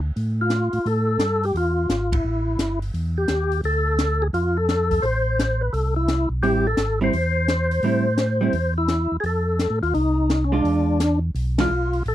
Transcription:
Already playing: D2
0.16 A2, open hi-hat
0.41 F4
0.50 snare, closed hi-hat
0.73 A2, open hi-hat
0.85 A2 A4, open hi-hat
1.19 G2, snare, closed hi-hat
1.43 G4, open hi-hat
1.54 E2 F4, open hi-hat
1.89 G#1, snare, closed hi-hat
2.12 E4, kick, ride
2.24 A1
2.59 G1, snare, closed hi-hat
2.82 open hi-hat
2.94 E2, open hi-hat
3.18 G4
3.28 D#2, snare, closed hi-hat
3.52 open hi-hat
3.63 D2 A4, open hi-hat
3.99 snare, closed hi-hat
4.22 G#4
4.33 F2 F4, open hi-hat
4.57 A4
4.69 snare, closed hi-hat
4.91 kick, open hi-hat
5.02 A1 C5, open hi-hat
5.39 snare, closed hi-hat
5.61 B4
5.73 C2 A4, open hi-hat
5.96 E4
6.08 snare, closed hi-hat
6.30 B1
6.42 A1 G3 C4 E4 G4, open hi-hat
6.67 A4
6.77 G#1, snare, closed hi-hat
7.01 G3 C4 E4 C5
7.13 E2, open hi-hat
7.48 snare, closed hi-hat
7.71 open hi-hat
7.83 A2 G3 C4 E4, open hi-hat
8.18 snare, closed hi-hat
8.41 G3 C4 E4
8.53 E2, open hi-hat
8.78 E4
8.88 snare, closed hi-hat
9.12 E2
9.20 F2 G#4, open hi-hat
9.26 A4
9.59 snare, closed hi-hat
9.70 A2
9.83 D#2 F4, open hi-hat
9.94 C2 D#4, open hi-hat
10.30 snare, closed hi-hat
10.44 C#4
10.52 G#3 D4 F4
10.64 E2, open hi-hat
11.00 snare, closed hi-hat
11.35 B1, open hi-hat
11.58 E3 G#3 D4 F4, snare, ride
11.70 B1
11.93 open hi-hat
12.05 A1 A4, open hi-hat

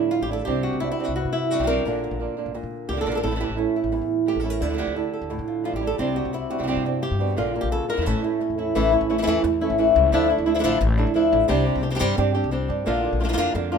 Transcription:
Already playing: A2 D3 F3 G3 A3 D4 E4
0.11 F4, muted nylon-string guitar stroke
0.21 A1 G4
0.29 A3 D4 E4
0.33 A4
0.45 C2 C3 G3 C4 D4 G4
0.63 F#4
0.73 C2
0.80 C4 D4 E4 G4
0.92 E4
0.99 C4 D4 G4
1.03 F#4
1.08 C2
1.16 G2 F#4, muted nylon-string guitar stroke
1.25 C3
1.33 E4
1.50 G3 C4 D4 F#4 G4
1.55 C4 D4 G4
1.59 B1 G3 C4 D4 G4
1.63 G3 C4 D4 G4 A#4
1.68 C3 G3 C4 D4 G4
1.85 A#1 A#2 D3 A#3 D4 F4
2.04 A#3
2.11 A#1
2.20 A#3 D4 F4
2.37 A#3 D4 F4
2.46 A#1
2.54 A#2, muted nylon-string guitar stroke
2.63 A#2
2.88 C#2 D3 A#3 D4 F4 G4
2.93 D3 A#3 D4 F4
2.97 A#3 D4 F4 A4
3.01 D3 A#3 D4 F4
3.06 A#1 D3 A#3 D4 F4
3.12 A4 A#4
3.17 A#4
3.23 A1 A2 E3 A3 C#4 E4 A4
3.27 A3 C#4 E4
3.31 E3 A3 C#4 E4
3.35 E3 A3 C#4 E4
3.40 E3 A3 C#4 E4 G4
3.49 A1
3.57 A3 C#4 E4
3.76 E4
3.84 A1
3.92 E2, muted nylon-string guitar stroke
4.01 A2
4.26 E3 A3 C#4 E4 G4
4.36 A1
4.40 E4 A4
4.44 A3 C#4 E4
4.50 A#4
4.61 D2 D3 F3 A3 D4 E4 A4
4.69 F3 A3 D4 E4
4.73 F3 A3 D4 E4
4.78 D3 F3 A3 D4 E4 G4
4.87 D2
4.95 A3 D4 E4 A4
5.13 A4
5.21 D2
5.30 A2, muted nylon-string guitar stroke
5.39 D3
5.48 F4
5.64 F3 A3 D4 E4 F4
5.73 A1 G4
5.81 A3 D4 E4
5.87 A4
5.98 C2 C3 G3 C4 D4 G4
6.16 C4 D4 F#4 G4
6.25 C2
6.33 E4, muted nylon-string guitar stroke
6.50 C4 D4 F#4 G4
6.58 C2 G3 C4 D4 G4
6.63 G3 C4 D4 G4
6.67 G2 C3 G3 C4 D4 G4
6.77 C3
6.85 C4 D4 G4
7.02 C3 G4, muted nylon-string guitar stroke
7.11 G2
7.19 B2 C4 D4 G4
7.37 A#1 A#2 D3 A#3 D4 F4
7.54 A#3 D4 F4
7.61 A#1 G4
7.72 C#3 A4, muted nylon-string guitar stroke
7.88 A#2 E3 A#3 D4 F4 A#4
7.93 E3 A3 C#4 E4
7.98 E2 E3 A3 C#4 E4
8.02 A2 A3 C#4 E4
8.06 A1 E3 A3 C#4 E4 A4
8.16 A2
8.23 A3 C#4 E4
8.40 C#4, muted nylon-string guitar stroke
8.50 E2
8.58 A3 C#4 E4
8.75 A1 E3 A3 C#4 E4
8.92 A3 C#4 E4
9.01 A1
9.09 E3 A3 C#4 E4
9.18 E3 A3 C#4 E4
9.23 E3 A3 C#4 E4
9.27 E2 E3 A3 C#4 E4
9.43 E2, muted nylon-string guitar stroke
9.60 A3 C#4 E4
9.70 A1
9.78 E3 A3 C#4 E4
9.95 C#2 A3 C#4 E4
10.12 D2 D3 F3 A3 D4 E4
10.29 A3 D4 E4
10.38 D2
10.46 F3 A3 D4 E4
10.55 F3 A3 D4 E4
10.59 F3 A3 D4 E4
10.64 A1 D3 F3 A3 D4 E4
10.80 A1, muted nylon-string guitar stroke
10.97 A3 D4 E4
11.14 F3 A3 D4 E4
11.32 A1 A3 D4 E4
11.48 C2 C3 G3 C4 D4 G4
11.66 C4 D4 G4
11.75 C2
11.83 C4 D4 G4, muted nylon-string guitar stroke
11.90 G3 C4 D4 G4
11.95 G3 C4 D4 G4
11.99 G2 C3 G3 C4 D4 G4
12.17 G2 C3 G3 C4 D4 G4, muted nylon-string guitar stroke
12.34 C4 D4 G4
12.44 C2
12.51 G3 C4 D4 G4, muted nylon-string guitar stroke
12.68 G2 C4 D4 G4
12.86 A#1 D3 A#3 D4 F4
13.03 A#3 D4 F4
13.13 A#1
13.20 D3 A#3 D4 F4, muted nylon-string guitar stroke
13.25 D3 D4 F4
13.29 D3 A#3 D4 F4
13.33 A#3 D4 F4
13.38 F2 D3 A#3 D4 F4
13.54 F2 D3 A#3 D4 F4, muted nylon-string guitar stroke
13.71 A#3 D4 F4

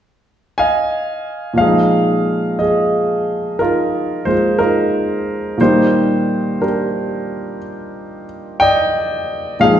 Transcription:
0.58 D#5 F5 G#5
1.53 A#2 F3
1.58 G#3 G#4 F5
1.64 D#4
2.59 G#4 D#5
3.59 D#4 F4 A#4
4.25 G#3 A#3 F4 C5
4.59 D#4 F4 A#4
5.57 A#2 D#3 G3 D#4 C5
5.62 A#3 G4
6.62 D4 G4 A#4
8.60 D5 D#5 G5
9.60 A#2 F3 G#3 D#4 G#4 F5

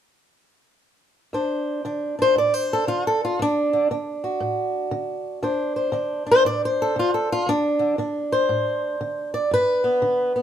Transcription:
1.33 D2 D4 C5
1.85 D3 D4
2.19 D4 C5
2.36 A2 D5
2.54 C5
2.73 A4
2.87 D3 F4
3.07 A4
3.25 F4
3.39 D2 D4
3.73 D3
3.91 D3 D4
4.24 F#4
4.40 A2
4.91 D3
5.43 D2 D4 C5
5.76 C5
5.92 D3 D4
6.26 D4
6.31 C5
6.45 A2 D5
6.65 C5
6.82 A4
6.96 D3 F4
7.14 A4
7.32 F4
7.46 D2 D4
7.79 D3
7.98 D3 D4
8.32 C5
8.49 A2
9.01 D3
9.34 D5
9.51 G2 B4
9.84 B3
10.02 D3
10.36 B3

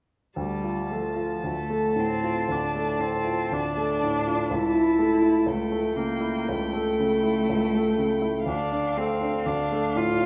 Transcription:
0.36 D2 G3 A5
0.64 F4
0.91 F3 A3
1.16 F4
1.44 D2 A3
1.70 A3
1.96 A2 C4
2.24 F4
2.49 D2 D4
2.75 A3
3.00 A2 C4
3.25 F4
3.52 D2 D4
3.77 A3
4.03 A2
4.27 F4
4.50 C#2 E4
4.75 E4
4.99 A3
5.22 E4
5.46 C#2 A3 G5
5.72 A3
5.96 C#3 A#3
6.21 E4
6.48 C#2 A3
6.73 A3
7.00 C#3
7.23 E4
7.49 C#2
7.75 A3
7.98 C#3
8.22 E4
8.46 D2 D4 F5
8.71 D4
8.97 A3 C4
9.21 D4
9.46 D2 D4
9.72 A3
9.96 A2 F4
10.21 D4

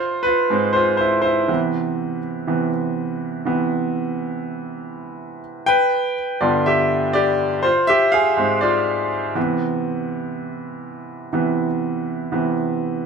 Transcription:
Already playing: F4 C5
0.23 F4 B4
0.50 G#2 G#3 C4
0.73 F4 C5
0.97 E4 C5
1.22 E4 C5
1.48 C3 E3 B3
2.47 C3 E3 B3
3.45 C3 E3 B3
5.66 B4 G5
6.41 G2 D3 B3 F4 D5
6.66 G4 E5
7.13 G4 D5
7.63 F4 C5
7.87 G4 E5
8.12 G#4 F5
8.37 G#2 G#3 C4
8.61 F4 D5
9.35 C3 E3 B3
11.33 C3 E3 B3
12.32 C3 E3 B3

